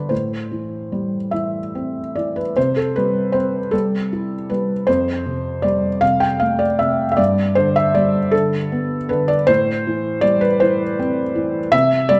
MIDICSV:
0, 0, Header, 1, 2, 480
1, 0, Start_track
1, 0, Key_signature, 0, "major"
1, 0, Tempo, 817439
1, 64, Time_signature, 6, 3, 24, 8
1, 1506, Tempo, 775194
1, 2466, Tempo, 767263
1, 5826, Tempo, 747198
1, 7568, End_track
2, 0, Start_track
2, 0, Title_t, "Felt piano"
2, 0, Program_c, 0, 0
2, 0, Control_c, 0, 64, 127
2, 0, Note_on_c, 0, 50, 34
2, 0, Note_on_c, 0, 55, 38
2, 0, Note_on_c, 0, 62, 40
2, 0, Note_on_c, 0, 71, 62
2, 0, Note_on_c, 0, 72, 74
2, 0, Note_on_c, 0, 74, 69
2, 54, Note_off_c, 0, 72, 0
2, 54, Note_on_c, 0, 72, 60
2, 61, Note_on_c, 0, 45, 49
2, 62, Note_off_c, 0, 50, 0
2, 75, Control_c, 0, 64, 0
2, 78, Note_off_c, 0, 55, 0
2, 79, Note_off_c, 0, 74, 0
2, 80, Note_off_c, 0, 62, 0
2, 80, Note_off_c, 0, 71, 0
2, 187, Control_c, 0, 64, 127
2, 303, Note_on_c, 0, 52, 34
2, 541, Note_on_c, 0, 55, 35
2, 683, Note_off_c, 0, 52, 0
2, 771, Note_on_c, 0, 76, 60
2, 772, Note_off_c, 0, 72, 0
2, 782, Note_on_c, 0, 52, 37
2, 924, Note_off_c, 0, 55, 0
2, 1028, Note_on_c, 0, 60, 33
2, 1169, Note_off_c, 0, 52, 0
2, 1264, Note_off_c, 0, 76, 0
2, 1265, Note_on_c, 0, 74, 58
2, 1275, Note_on_c, 0, 52, 31
2, 1386, Note_on_c, 0, 71, 56
2, 1388, Note_off_c, 0, 74, 0
2, 1416, Note_off_c, 0, 60, 0
2, 1480, Note_off_c, 0, 45, 0
2, 1504, Note_off_c, 0, 71, 0
2, 1506, Note_on_c, 0, 72, 86
2, 1509, Note_off_c, 0, 52, 0
2, 1514, Note_on_c, 0, 48, 62
2, 1515, Control_c, 0, 64, 0
2, 1607, Control_c, 0, 64, 127
2, 1626, Note_off_c, 0, 72, 0
2, 1630, Note_on_c, 0, 69, 69
2, 1747, Note_off_c, 0, 69, 0
2, 1750, Note_on_c, 0, 71, 80
2, 1761, Note_on_c, 0, 55, 46
2, 1976, Note_on_c, 0, 72, 76
2, 1987, Note_off_c, 0, 71, 0
2, 1989, Note_on_c, 0, 60, 47
2, 2137, Note_off_c, 0, 55, 0
2, 2216, Note_on_c, 0, 69, 74
2, 2221, Note_off_c, 0, 72, 0
2, 2228, Note_on_c, 0, 55, 45
2, 2237, Control_c, 0, 64, 0
2, 2352, Control_c, 0, 64, 127
2, 2372, Note_off_c, 0, 60, 0
2, 2474, Note_on_c, 0, 64, 46
2, 2610, Note_off_c, 0, 55, 0
2, 2699, Note_off_c, 0, 69, 0
2, 2704, Note_on_c, 0, 71, 61
2, 2715, Note_on_c, 0, 55, 41
2, 2851, Note_off_c, 0, 64, 0
2, 2920, Note_off_c, 0, 48, 0
2, 2936, Note_on_c, 0, 72, 86
2, 2941, Note_off_c, 0, 71, 0
2, 2946, Note_off_c, 0, 55, 0
2, 2947, Note_on_c, 0, 41, 61
2, 2952, Control_c, 0, 64, 0
2, 3058, Control_c, 0, 64, 127
2, 3183, Note_on_c, 0, 48, 46
2, 3409, Note_on_c, 0, 74, 81
2, 3412, Note_off_c, 0, 72, 0
2, 3421, Note_on_c, 0, 55, 48
2, 3561, Note_off_c, 0, 48, 0
2, 3651, Note_on_c, 0, 77, 94
2, 3653, Note_off_c, 0, 74, 0
2, 3658, Note_on_c, 0, 48, 48
2, 3668, Control_c, 0, 64, 0
2, 3772, Control_c, 0, 64, 127
2, 3772, Note_on_c, 0, 79, 78
2, 3775, Note_off_c, 0, 77, 0
2, 3805, Note_off_c, 0, 55, 0
2, 3893, Note_on_c, 0, 77, 81
2, 3897, Note_off_c, 0, 79, 0
2, 3905, Note_on_c, 0, 57, 47
2, 4013, Note_on_c, 0, 74, 77
2, 4019, Note_off_c, 0, 77, 0
2, 4048, Note_off_c, 0, 48, 0
2, 4139, Note_off_c, 0, 74, 0
2, 4139, Note_on_c, 0, 76, 80
2, 4149, Note_on_c, 0, 48, 45
2, 4292, Note_off_c, 0, 57, 0
2, 4334, Note_off_c, 0, 76, 0
2, 4344, Note_on_c, 0, 76, 70
2, 4363, Note_off_c, 0, 41, 0
2, 4375, Note_on_c, 0, 74, 87
2, 4385, Note_on_c, 0, 43, 62
2, 4386, Note_off_c, 0, 76, 0
2, 4388, Note_off_c, 0, 48, 0
2, 4398, Control_c, 0, 64, 0
2, 4497, Control_c, 0, 64, 127
2, 4617, Note_on_c, 0, 72, 87
2, 4619, Note_off_c, 0, 74, 0
2, 4630, Note_on_c, 0, 50, 54
2, 4739, Note_off_c, 0, 72, 0
2, 4745, Note_on_c, 0, 76, 86
2, 4862, Note_on_c, 0, 74, 86
2, 4863, Note_off_c, 0, 76, 0
2, 4872, Note_on_c, 0, 55, 49
2, 5007, Note_off_c, 0, 50, 0
2, 5093, Note_on_c, 0, 69, 91
2, 5099, Note_off_c, 0, 74, 0
2, 5104, Note_on_c, 0, 50, 46
2, 5109, Control_c, 0, 64, 0
2, 5215, Control_c, 0, 64, 127
2, 5248, Note_off_c, 0, 55, 0
2, 5347, Note_on_c, 0, 59, 49
2, 5488, Note_off_c, 0, 50, 0
2, 5579, Note_on_c, 0, 71, 76
2, 5580, Note_off_c, 0, 69, 0
2, 5589, Note_on_c, 0, 50, 54
2, 5697, Note_on_c, 0, 74, 86
2, 5703, Note_off_c, 0, 71, 0
2, 5733, Note_off_c, 0, 59, 0
2, 5801, Note_off_c, 0, 43, 0
2, 5814, Note_on_c, 0, 72, 104
2, 5822, Note_off_c, 0, 74, 0
2, 5824, Note_on_c, 0, 45, 67
2, 5830, Note_off_c, 0, 50, 0
2, 5839, Control_c, 0, 64, 0
2, 5957, Control_c, 0, 64, 127
2, 6073, Note_on_c, 0, 52, 55
2, 6293, Note_on_c, 0, 74, 96
2, 6305, Note_off_c, 0, 72, 0
2, 6305, Note_on_c, 0, 55, 52
2, 6419, Note_on_c, 0, 71, 89
2, 6421, Note_off_c, 0, 74, 0
2, 6455, Note_off_c, 0, 52, 0
2, 6542, Note_on_c, 0, 72, 88
2, 6544, Note_off_c, 0, 71, 0
2, 6554, Note_on_c, 0, 52, 55
2, 6689, Note_off_c, 0, 55, 0
2, 6784, Note_off_c, 0, 72, 0
2, 6795, Note_on_c, 0, 60, 58
2, 6933, Note_off_c, 0, 52, 0
2, 7026, Note_on_c, 0, 52, 56
2, 7171, Note_off_c, 0, 60, 0
2, 7237, Note_off_c, 0, 45, 0
2, 7259, Note_on_c, 0, 76, 114
2, 7264, Note_off_c, 0, 52, 0
2, 7269, Note_on_c, 0, 48, 72
2, 7276, Control_c, 0, 64, 0
2, 7367, Control_c, 0, 64, 127
2, 7498, Note_on_c, 0, 74, 109
2, 7503, Note_off_c, 0, 76, 0
2, 7510, Note_on_c, 0, 55, 60
2, 7568, Note_off_c, 0, 48, 0
2, 7568, Note_off_c, 0, 55, 0
2, 7568, Note_off_c, 0, 74, 0
2, 7568, End_track
0, 0, End_of_file